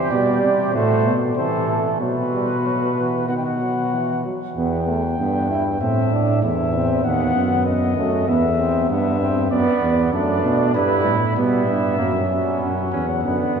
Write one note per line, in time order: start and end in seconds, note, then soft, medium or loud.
0.00 0.11 E3 medium
0.00 0.72 G4 medium
0.00 0.10 C5 medium
0.11 0.44 B2 medium
0.11 0.73 G3 medium
0.11 0.76 D5 medium
0.43 0.74 C3 medium
0.74 1.07 A2 medium
0.74 1.14 A3 medium
0.74 1.14 F#4 medium
0.74 1.15 C5 medium
1.05 1.36 B2 medium
1.37 1.77 C3 medium
1.37 1.97 E3 medium
1.37 1.96 A4 medium
1.37 1.66 C5 medium
1.68 1.83 A4 medium
2.00 3.25 B2 medium
2.00 2.15 F#3 medium
2.00 3.27 F#4 medium
2.00 3.26 B4 medium
2.32 2.47 G3 medium
2.65 2.79 F#3 medium
2.96 3.30 E3 medium
3.28 4.22 B2 medium
3.28 3.60 D#3 medium
3.28 4.23 F#4 medium
3.28 3.38 F#5 medium
3.37 3.45 G5 soft
3.44 4.25 F#5 medium
3.61 3.95 F#3 soft
3.93 4.24 E3 medium
4.25 4.39 F#3 soft
4.56 5.15 E2 medium
4.56 4.86 B3 medium
4.56 5.77 G5 medium
4.88 5.02 A3 medium
5.19 5.80 G2 medium
5.19 5.49 B3 medium
5.50 5.64 E4 medium
5.81 6.44 A2 medium
5.81 6.11 C4 medium
5.81 6.42 E5 medium
6.12 6.44 D4 medium
6.43 7.04 E2 medium
6.43 6.73 E4 medium
6.43 7.03 E5 medium
6.74 7.04 C4 medium
7.04 7.35 D#2 medium
7.04 7.65 B3 medium
7.04 7.65 F#5 medium
7.35 7.96 F#2 medium
7.66 7.97 B3 medium
7.66 8.26 D#5 medium
7.97 8.27 F#2 medium
7.97 8.27 A3 medium
8.27 8.88 E2 medium
8.27 8.41 B3 medium
8.27 8.88 E5 medium
8.59 8.89 C4 medium
8.89 9.49 G2 medium
8.89 9.20 B3 medium
8.89 9.50 E5 medium
9.20 9.50 C4 medium
9.51 9.65 F#2 medium
9.51 10.11 B3 medium
9.51 10.08 B3 medium
9.51 10.11 D5 medium
9.81 10.12 E2 medium
10.12 10.43 F#2 medium
10.12 10.73 A3 medium
10.12 10.73 D4 medium
10.12 10.73 D5 medium
10.43 10.76 B2 medium
10.74 11.07 G2 medium
10.74 11.14 G3 medium
10.74 11.35 E4 medium
10.74 11.14 B4 medium
11.05 11.36 A2 medium
11.36 11.69 B2 medium
11.36 11.95 G3 medium
11.36 11.97 B3 medium
11.36 12.57 E5 medium
11.67 12.00 G2 medium
11.98 12.39 F#2 medium
11.98 13.21 F#3 medium
11.98 12.12 A#3 medium
12.29 12.91 C#4 medium
12.61 12.90 F#2 medium
12.61 13.60 F#5 medium
12.92 13.23 E2 medium
12.92 13.06 C#4 medium
13.23 13.38 F#2 medium
13.23 13.60 D3 medium
13.23 13.60 B3 medium
13.55 13.60 G2 medium